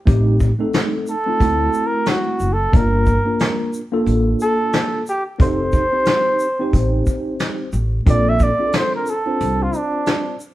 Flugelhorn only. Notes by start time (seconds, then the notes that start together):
1.10 A4
1.87 A#4
2.09 F#4
2.53 A4
2.76 A#4
4.42 A4
5.09 G4
5.43 C5
8.09 D5
8.29 E5
8.43 D5
8.76 C5
8.96 A#4
9.10 A4
9.63 F4
9.77 D4